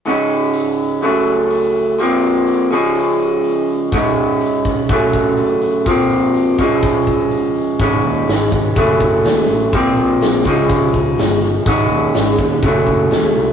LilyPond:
<<
  \new Staff \with { instrumentName = "Clean electric guitar" } { \clef bass \time 4/4 \key des \major \tempo 4 = 124 <aes, des aes des' ees'>2 <ges, des ges a des'>2 | <bes, f bes c'>4. <des f aes des'>2~ <des f aes des'>8 | <aes, des aes des' ees'>2 <ges, des ges a des'>2 | <bes, f bes c'>4. <des f aes des'>2~ <des f aes des'>8 |
<aes, des aes des' ees'>2 <ges, des ges a des'>2 | <bes, f bes c'>4. <des f aes des'>2~ <des f aes des'>8 | <aes, des aes des' ees'>2 <ges, des ges a des'>2 | }
  \new Staff \with { instrumentName = "Picked electric bass" } { \clef bass \time 4/4 \key des \major r1 | r1 | r1 | r1 |
aes,,8 ees,8 aes,,8 aes,,8 ges,,8 ges,,8 ees,8 a,,8 | bes,,8 bes,,8 bes,,8 des,8 des8 des,8 g,,4 | aes,,8 ees,8 aes,,8 ees,8 ges,,8 ges,,8 ees,8 c,8 | }
  \new DrumStaff \with { instrumentName = "Drums" } \drummode { \time 4/4 hho8 hho8 hho8 hho8 hho8 hho8 hho8 hho8 | hho8 hho8 hho8 hho8 hho8 hho8 hho8 hho8 | <hho bd>8 hho8 hho8 <hho bd>8 <hho bd>8 <hho bd>8 hho8 hho8 | <hho bd>8 hho8 hho8 <hho bd>8 <hho bd>8 <hho bd>8 hho8 hho8 |
<hho bd>8 hho8 <hho sn>8 <hho bd>8 <hho bd>8 <hho bd>8 <hho sn>8 hho8 | <hho bd>8 hho8 <hho sn>8 <hho bd>8 <hho bd>8 <hho bd>8 <hho sn>8 hho8 | <hho bd>8 hho8 <hho sn>8 <hho bd>8 <hho bd>8 <hho bd>8 <hho sn>8 hho8 | }
>>